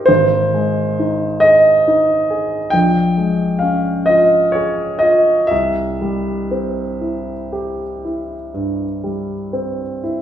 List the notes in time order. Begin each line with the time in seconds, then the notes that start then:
Already playing: D#4 G4 A#4 C5 D#5 F5
0.06 G#1 C5
0.54 G#3
0.99 D#4
1.40 G#4 D#5
1.88 D#4
2.30 G#4
2.70 A#1 G5
3.17 G#3
3.59 C#4 F5
4.06 F4 D#5
4.52 G#4 C#5
4.99 F4 D#5
5.47 C2 E5
6.01 G3
6.51 C4
7.01 E4
7.53 G4
8.05 E4
8.54 G2
9.04 G3
9.53 C4
10.03 E4